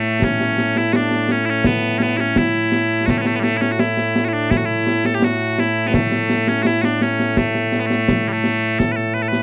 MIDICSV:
0, 0, Header, 1, 3, 480
1, 0, Start_track
1, 0, Key_signature, 3, "major"
1, 0, Tempo, 714286
1, 150, Time_signature, 2, 2, 24, 8
1, 6336, End_track
2, 0, Start_track
2, 0, Title_t, "Bagpipes"
2, 0, Program_c, 0, 109
2, 0, Note_on_c, 0, 45, 89
2, 0, Note_on_c, 0, 57, 83
2, 163, Note_off_c, 0, 57, 0
2, 163, Note_on_c, 0, 61, 96
2, 521, Note_off_c, 0, 61, 0
2, 521, Note_on_c, 0, 64, 93
2, 623, Note_off_c, 0, 64, 0
2, 623, Note_on_c, 0, 66, 94
2, 646, Note_off_c, 0, 66, 0
2, 646, Note_on_c, 0, 62, 94
2, 883, Note_off_c, 0, 62, 0
2, 883, Note_on_c, 0, 61, 83
2, 977, Note_off_c, 0, 61, 0
2, 977, Note_on_c, 0, 64, 98
2, 1007, Note_off_c, 0, 64, 0
2, 1007, Note_on_c, 0, 61, 98
2, 1120, Note_off_c, 0, 61, 0
2, 1120, Note_on_c, 0, 59, 87
2, 1332, Note_off_c, 0, 59, 0
2, 1332, Note_on_c, 0, 61, 88
2, 1361, Note_off_c, 0, 61, 0
2, 1361, Note_on_c, 0, 59, 88
2, 1458, Note_off_c, 0, 59, 0
2, 1458, Note_on_c, 0, 64, 94
2, 1480, Note_off_c, 0, 64, 0
2, 1480, Note_on_c, 0, 61, 94
2, 1598, Note_off_c, 0, 61, 0
2, 1598, Note_on_c, 0, 64, 99
2, 2056, Note_off_c, 0, 64, 0
2, 2056, Note_on_c, 0, 66, 85
2, 2084, Note_off_c, 0, 66, 0
2, 2084, Note_on_c, 0, 57, 85
2, 2137, Note_off_c, 0, 57, 0
2, 2137, Note_on_c, 0, 61, 62
2, 2159, Note_off_c, 0, 61, 0
2, 2159, Note_on_c, 0, 59, 62
2, 2194, Note_off_c, 0, 59, 0
2, 2194, Note_on_c, 0, 57, 92
2, 2255, Note_off_c, 0, 57, 0
2, 2255, Note_on_c, 0, 59, 61
2, 2282, Note_off_c, 0, 59, 0
2, 2282, Note_on_c, 0, 55, 61
2, 2308, Note_off_c, 0, 55, 0
2, 2308, Note_on_c, 0, 57, 106
2, 2399, Note_off_c, 0, 57, 0
2, 2399, Note_on_c, 0, 64, 86
2, 2428, Note_off_c, 0, 64, 0
2, 2428, Note_on_c, 0, 61, 86
2, 2497, Note_off_c, 0, 61, 0
2, 2497, Note_on_c, 0, 66, 76
2, 2551, Note_off_c, 0, 66, 0
2, 2551, Note_on_c, 0, 64, 94
2, 2854, Note_off_c, 0, 64, 0
2, 2854, Note_on_c, 0, 66, 71
2, 2879, Note_off_c, 0, 66, 0
2, 2879, Note_on_c, 0, 64, 71
2, 2912, Note_off_c, 0, 64, 0
2, 2912, Note_on_c, 0, 62, 95
2, 3030, Note_off_c, 0, 62, 0
2, 3030, Note_on_c, 0, 64, 98
2, 3071, Note_off_c, 0, 64, 0
2, 3071, Note_on_c, 0, 66, 73
2, 3127, Note_off_c, 0, 66, 0
2, 3127, Note_on_c, 0, 64, 90
2, 3399, Note_off_c, 0, 64, 0
2, 3399, Note_on_c, 0, 69, 101
2, 3459, Note_off_c, 0, 69, 0
2, 3459, Note_on_c, 0, 67, 82
2, 3520, Note_off_c, 0, 67, 0
2, 3520, Note_on_c, 0, 66, 92
2, 3760, Note_off_c, 0, 66, 0
2, 3760, Note_on_c, 0, 64, 93
2, 3946, Note_off_c, 0, 64, 0
2, 3946, Note_on_c, 0, 59, 77
2, 3994, Note_off_c, 0, 59, 0
2, 3994, Note_on_c, 0, 57, 83
2, 4360, Note_off_c, 0, 57, 0
2, 4360, Note_on_c, 0, 61, 98
2, 4452, Note_off_c, 0, 61, 0
2, 4452, Note_on_c, 0, 66, 98
2, 4480, Note_off_c, 0, 66, 0
2, 4480, Note_on_c, 0, 64, 98
2, 4580, Note_off_c, 0, 64, 0
2, 4580, Note_on_c, 0, 66, 90
2, 4602, Note_off_c, 0, 66, 0
2, 4602, Note_on_c, 0, 62, 90
2, 4717, Note_off_c, 0, 62, 0
2, 4717, Note_on_c, 0, 61, 80
2, 4958, Note_off_c, 0, 61, 0
2, 4958, Note_on_c, 0, 57, 80
2, 5242, Note_off_c, 0, 57, 0
2, 5242, Note_on_c, 0, 59, 61
2, 5283, Note_off_c, 0, 59, 0
2, 5283, Note_on_c, 0, 57, 92
2, 5566, Note_off_c, 0, 57, 0
2, 5566, Note_on_c, 0, 55, 62
2, 5596, Note_off_c, 0, 55, 0
2, 5596, Note_on_c, 0, 57, 85
2, 5907, Note_off_c, 0, 57, 0
2, 5907, Note_on_c, 0, 69, 85
2, 5994, Note_off_c, 0, 69, 0
2, 5994, Note_on_c, 0, 71, 65
2, 6023, Note_off_c, 0, 71, 0
2, 6023, Note_on_c, 0, 69, 65
2, 6142, Note_off_c, 0, 69, 0
2, 6142, Note_on_c, 0, 71, 82
2, 6198, Note_off_c, 0, 71, 0
2, 6198, Note_on_c, 0, 69, 76
2, 6238, Note_off_c, 0, 69, 0
2, 6238, Note_on_c, 0, 71, 87
2, 6336, Note_off_c, 0, 45, 0
2, 6336, Note_off_c, 0, 71, 0
2, 6336, End_track
3, 0, Start_track
3, 0, Title_t, "Drums"
3, 149, Note_on_c, 9, 35, 65
3, 149, Note_on_c, 9, 38, 100
3, 216, Note_off_c, 9, 35, 0
3, 216, Note_off_c, 9, 38, 0
3, 271, Note_on_c, 9, 38, 77
3, 338, Note_off_c, 9, 38, 0
3, 388, Note_on_c, 9, 38, 72
3, 455, Note_off_c, 9, 38, 0
3, 511, Note_on_c, 9, 38, 62
3, 578, Note_off_c, 9, 38, 0
3, 628, Note_on_c, 9, 38, 106
3, 695, Note_off_c, 9, 38, 0
3, 746, Note_on_c, 9, 38, 63
3, 813, Note_off_c, 9, 38, 0
3, 864, Note_on_c, 9, 38, 76
3, 931, Note_off_c, 9, 38, 0
3, 1105, Note_on_c, 9, 35, 64
3, 1105, Note_on_c, 9, 38, 102
3, 1172, Note_off_c, 9, 35, 0
3, 1172, Note_off_c, 9, 38, 0
3, 1343, Note_on_c, 9, 38, 77
3, 1410, Note_off_c, 9, 38, 0
3, 1466, Note_on_c, 9, 38, 61
3, 1533, Note_off_c, 9, 38, 0
3, 1586, Note_on_c, 9, 35, 55
3, 1586, Note_on_c, 9, 38, 102
3, 1653, Note_off_c, 9, 35, 0
3, 1653, Note_off_c, 9, 38, 0
3, 1827, Note_on_c, 9, 38, 75
3, 1895, Note_off_c, 9, 38, 0
3, 2067, Note_on_c, 9, 35, 56
3, 2067, Note_on_c, 9, 38, 82
3, 2135, Note_off_c, 9, 35, 0
3, 2135, Note_off_c, 9, 38, 0
3, 2186, Note_on_c, 9, 38, 69
3, 2253, Note_off_c, 9, 38, 0
3, 2309, Note_on_c, 9, 38, 74
3, 2376, Note_off_c, 9, 38, 0
3, 2430, Note_on_c, 9, 38, 63
3, 2497, Note_off_c, 9, 38, 0
3, 2550, Note_on_c, 9, 38, 106
3, 2617, Note_off_c, 9, 38, 0
3, 2670, Note_on_c, 9, 38, 65
3, 2737, Note_off_c, 9, 38, 0
3, 2793, Note_on_c, 9, 38, 82
3, 2861, Note_off_c, 9, 38, 0
3, 3032, Note_on_c, 9, 35, 67
3, 3032, Note_on_c, 9, 38, 96
3, 3100, Note_off_c, 9, 35, 0
3, 3100, Note_off_c, 9, 38, 0
3, 3271, Note_on_c, 9, 38, 75
3, 3338, Note_off_c, 9, 38, 0
3, 3391, Note_on_c, 9, 38, 76
3, 3459, Note_off_c, 9, 38, 0
3, 3510, Note_on_c, 9, 38, 112
3, 3578, Note_off_c, 9, 38, 0
3, 3752, Note_on_c, 9, 38, 89
3, 3819, Note_off_c, 9, 38, 0
3, 3991, Note_on_c, 9, 35, 70
3, 3991, Note_on_c, 9, 38, 108
3, 4058, Note_off_c, 9, 35, 0
3, 4058, Note_off_c, 9, 38, 0
3, 4111, Note_on_c, 9, 38, 77
3, 4179, Note_off_c, 9, 38, 0
3, 4231, Note_on_c, 9, 38, 86
3, 4299, Note_off_c, 9, 38, 0
3, 4350, Note_on_c, 9, 38, 67
3, 4418, Note_off_c, 9, 38, 0
3, 4469, Note_on_c, 9, 38, 99
3, 4536, Note_off_c, 9, 38, 0
3, 4592, Note_on_c, 9, 38, 74
3, 4660, Note_off_c, 9, 38, 0
3, 4713, Note_on_c, 9, 38, 74
3, 4781, Note_off_c, 9, 38, 0
3, 4835, Note_on_c, 9, 38, 61
3, 4902, Note_off_c, 9, 38, 0
3, 4953, Note_on_c, 9, 35, 59
3, 4953, Note_on_c, 9, 38, 98
3, 5020, Note_off_c, 9, 35, 0
3, 5020, Note_off_c, 9, 38, 0
3, 5073, Note_on_c, 9, 38, 64
3, 5140, Note_off_c, 9, 38, 0
3, 5190, Note_on_c, 9, 38, 68
3, 5257, Note_off_c, 9, 38, 0
3, 5312, Note_on_c, 9, 38, 71
3, 5379, Note_off_c, 9, 38, 0
3, 5433, Note_on_c, 9, 35, 61
3, 5433, Note_on_c, 9, 38, 102
3, 5500, Note_off_c, 9, 35, 0
3, 5500, Note_off_c, 9, 38, 0
3, 5670, Note_on_c, 9, 38, 73
3, 5737, Note_off_c, 9, 38, 0
3, 5912, Note_on_c, 9, 35, 54
3, 5912, Note_on_c, 9, 38, 86
3, 5979, Note_off_c, 9, 35, 0
3, 5979, Note_off_c, 9, 38, 0
3, 6033, Note_on_c, 9, 38, 27
3, 6101, Note_off_c, 9, 38, 0
3, 6150, Note_on_c, 9, 38, 26
3, 6217, Note_off_c, 9, 38, 0
3, 6267, Note_on_c, 9, 38, 69
3, 6334, Note_off_c, 9, 38, 0
3, 6336, End_track
0, 0, End_of_file